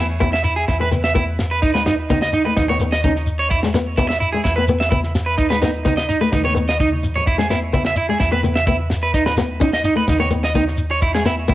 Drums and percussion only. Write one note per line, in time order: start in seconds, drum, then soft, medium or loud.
0.21 kick medium
0.21 high conga medium
0.21 shekere medium
0.34 snare medium
0.44 shekere medium
0.68 kick medium
0.68 snare medium
0.68 muted conga soft
0.68 shekere medium
0.92 high conga medium
0.92 shekere medium
1.04 snare medium
1.15 kick medium
1.15 high conga medium
1.15 shekere medium
1.39 snare medium
1.39 muted conga soft
1.39 shekere medium
1.63 kick medium
1.63 muted conga soft
1.63 shekere medium
1.75 snare medium
1.86 snare medium
1.86 muted conga soft
1.86 low conga medium
1.86 shekere medium
2.09 kick medium
2.09 snare soft
2.09 high conga loud
2.09 shekere medium
2.22 snare medium
2.33 shekere medium
2.57 kick medium
2.57 snare medium
2.57 muted conga soft
2.57 high conga medium
2.57 low conga medium
2.57 shekere medium
2.79 shekere medium
2.92 snare medium
3.03 kick medium
3.03 high conga medium
3.03 shekere medium
3.16 snare soft
3.26 muted conga soft
3.26 shekere medium
3.50 kick medium
3.50 muted conga soft
3.50 shekere medium
3.63 snare medium
3.74 snare medium
3.74 muted conga soft
3.74 shekere medium
3.98 kick medium
3.98 high conga medium
3.98 shekere medium
4.10 snare medium
4.22 shekere medium
4.45 kick medium
4.45 snare medium
4.45 muted conga soft
4.45 shekere medium
4.68 high conga medium
4.68 shekere medium
4.81 snare medium
4.91 kick medium
4.91 high conga medium
4.91 shekere medium
5.03 snare soft
5.15 snare medium
5.15 muted conga soft
5.15 shekere loud
5.38 kick medium
5.38 muted conga soft
5.38 shekere medium
5.51 snare medium
5.62 snare medium
5.62 muted conga soft
5.62 low conga medium
5.62 shekere loud
5.74 shekere soft
5.86 kick medium
5.86 snare soft
5.86 high conga medium
5.86 shekere medium
5.98 snare medium
6.10 shekere medium
6.21 snare soft
6.32 kick medium
6.32 snare medium
6.32 muted conga soft
6.32 high conga medium
6.32 low conga medium
6.32 shekere medium
6.56 shekere medium
6.68 snare medium
6.68 shekere soft
6.80 kick medium
6.80 high conga soft
6.80 shekere medium
6.92 high conga medium
7.03 low conga medium
7.03 shekere medium
7.16 low conga medium
7.16 shekere soft
7.27 kick medium
7.27 muted conga soft
7.27 shekere medium
7.39 snare medium
7.50 snare medium
7.50 muted conga soft
7.50 shekere medium
7.73 kick medium
7.73 high conga medium
7.73 shekere medium
7.85 snare medium
7.96 shekere medium
8.20 kick medium
8.20 snare medium
8.20 muted conga soft
8.20 shekere medium
8.43 high conga medium
8.43 shekere medium
8.56 snare medium
8.67 kick medium
8.67 high conga medium
8.67 shekere medium
8.90 snare medium
8.90 muted conga soft
8.90 shekere medium
9.14 kick medium
9.14 muted conga soft
9.14 shekere medium
9.26 snare medium
9.37 snare medium
9.37 muted conga soft
9.37 low conga medium
9.37 shekere loud
9.60 kick medium
9.60 high conga medium
9.60 shekere medium
9.73 snare medium
9.84 shekere medium
10.08 kick medium
10.08 snare medium
10.08 muted conga soft
10.08 high conga medium
10.08 low conga medium
10.08 shekere medium
10.31 shekere medium
10.44 snare medium
10.54 kick medium
10.54 high conga medium
10.54 shekere medium
10.68 snare soft
10.77 muted conga soft
10.77 shekere medium
11.01 kick medium
11.01 muted conga soft
11.01 shekere medium
11.15 snare medium
11.25 snare medium
11.25 muted conga soft
11.25 shekere medium
11.48 kick medium
11.48 high conga medium
11.48 shekere medium